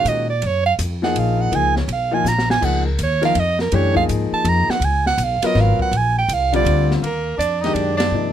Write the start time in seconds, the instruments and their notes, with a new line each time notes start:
Already playing: grand piano D#3 G#3 C#4 F#4
0.05 upright bass A#2, soprano saxophone D#5, hi-hat pedal, ride
0.30 soprano saxophone D5
0.42 upright bass F#2, ride
0.46 soprano saxophone C#5
0.66 soprano saxophone F5
0.79 upright bass F2, hi-hat pedal, ride
1.02 grand piano F3 A#3 D#4 G#4, soprano saxophone F#5, snare
1.16 upright bass A#1, soprano saxophone F5, ride
1.41 soprano saxophone F#5
1.51 upright bass C#2, grand piano F3 A#3 D#4 G#4, soprano saxophone G#5, ride
1.76 soprano saxophone C#5, snare
1.88 upright bass B1, ride
1.92 soprano saxophone F5
2.11 grand piano F3 A#3 D#4 F4, soprano saxophone G#5
2.25 upright bass A#1, soprano saxophone A#5, snare, hi-hat pedal
2.39 snare
2.50 soprano saxophone G#5, snare
2.61 upright bass C#2, grand piano F3 A#3 D#4 G#4, soprano saxophone F#5, kick, crash
2.86 soprano saxophone A#4
2.99 upright bass D#2, hi-hat pedal, ride
3.03 soprano saxophone C#5
3.22 grand piano F3 A#3 D#4 A#4, soprano saxophone F5, snare, ride
3.35 upright bass F2, ride
3.39 soprano saxophone D#5
3.59 soprano saxophone A#4, snare
3.72 upright bass F#2, grand piano E3 A3 D4 G4, soprano saxophone C#5, ride
3.94 grand piano F3 A#3 D#4 G#4, soprano saxophone F5, kick
4.09 upright bass G#2, hi-hat pedal, ride
4.32 soprano saxophone A5, muted upright bass stroke
4.44 upright bass F2, ride
4.49 soprano saxophone A#5
4.68 soprano saxophone F#5, muted upright bass stroke, snare
4.80 upright bass C#2, ride
4.84 soprano saxophone G#5
5.06 soprano saxophone F#5, snare
5.18 upright bass B1, hi-hat pedal, ride
5.24 soprano saxophone F5
5.42 grand piano F#3 B3 F4 A#4, muted upright bass stroke, snare, ride
5.46 soprano saxophone D#5
5.55 upright bass G#1, snare
5.60 soprano saxophone F5
5.79 soprano saxophone F#5, muted upright bass stroke, kick
5.91 upright bass A#1, ride
5.97 soprano saxophone G#5
6.18 soprano saxophone G5
6.28 upright bass C2, hi-hat pedal, ride
6.33 soprano saxophone F5
6.53 grand piano D3 G3 C4 F4, soprano saxophone D5, ride
6.65 upright bass D2, ride
6.91 snare
7.02 upright bass D#2, tenor saxophone A#3, ride
7.06 soprano saxophone A#4
7.38 upright bass F2, tenor saxophone D4, soprano saxophone D5, hi-hat pedal, ride
7.61 grand piano D#3 G#3 D4, tenor saxophone D#4, soprano saxophone D#5, snare, ride
7.65 grand piano G4
7.74 upright bass F#2, tenor saxophone D4, soprano saxophone D5, ride
7.97 tenor saxophone D4, soprano saxophone D5, snare, ride
8.11 upright bass G2, grand piano C3 F3 A#3 D#4